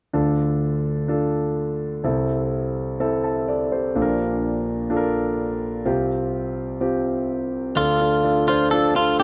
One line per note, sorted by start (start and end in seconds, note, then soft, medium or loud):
0.13 2.00 D2 soft
0.13 2.00 D3 medium
0.13 0.98 D4 medium
0.13 0.98 F4 soft
0.13 0.98 A4 medium
1.08 1.93 D4 medium
1.08 1.93 F4 soft
1.08 1.93 A4 medium
2.04 3.91 C2 medium
2.04 3.91 C3 soft
2.04 2.88 C4 medium
2.04 2.88 E4 medium
2.04 2.88 A4 medium
3.00 3.84 C4 medium
3.00 3.84 E4 medium
3.00 3.24 A4 medium
3.24 3.47 E5 soft
3.24 3.46 A5 soft
3.48 3.71 A4 soft
3.48 3.70 D5 soft
3.72 4.17 G4 soft
3.72 4.17 C5 soft
3.95 5.82 A#1 soft
3.95 5.82 A#2 soft
3.95 4.79 D4 medium
3.95 4.79 F4 soft
3.95 4.02 A4 medium
4.02 4.82 A#4 medium
4.90 5.74 D4 medium
4.90 5.74 F4 medium
4.90 4.97 A4 medium
4.96 5.77 A#4 medium
5.85 7.72 C2 soft
5.85 7.72 C3 medium
5.85 6.70 C4 medium
5.85 6.70 F4 medium
5.85 6.70 G4 medium
6.81 7.65 C4 medium
6.81 7.65 F4 soft
6.81 7.65 G4 medium
7.76 9.23 D2 soft
7.76 9.23 D3 soft
7.76 7.97 D4 medium
7.76 7.97 F4 medium
7.76 8.47 F4 medium
7.76 7.97 A4 medium
8.00 8.21 D4 medium
8.00 8.21 F4 soft
8.00 8.22 A4 medium
8.24 8.45 D4 medium
8.24 8.45 F4 soft
8.24 8.45 A4 medium
8.48 8.69 D4 medium
8.48 8.71 F4 medium
8.48 8.69 F4 medium
8.48 8.69 C5 medium
8.71 8.93 D4 medium
8.71 8.93 F4 medium
8.71 8.93 A4 medium
8.96 9.17 D4 medium
8.96 9.19 F4 medium
8.96 9.17 F4 soft
8.96 9.17 A4 medium
9.20 9.23 D4 medium
9.20 9.23 F4 medium
9.20 9.23 G4 medium